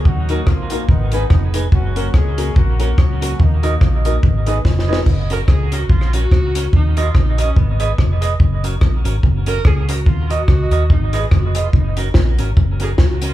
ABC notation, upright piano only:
X:1
M:4/4
L:1/8
Q:"Swing" 1/4=144
K:Gb
V:1 name="Upright piano"
z [B,EGB] z [B,EGB] [Ac] [CEAc] z [CEAc] | z [B,DGB] z [B,DGB] [GB] [B,DGB] z [B,DGB] | z [B,EGB] z [B,EGB] [Ac] [CEAc] z [CEAc] | z8 |
z8 | z8 | z8 | z8 |]